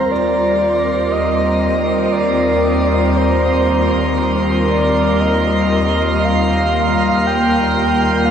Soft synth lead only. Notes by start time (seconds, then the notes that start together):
Already playing: C5
0.11 D5
1.12 D#5
2.12 D5
3.17 C5
4.69 D5
5.20 D#5
6.25 F5
7.27 G5
8.25 F5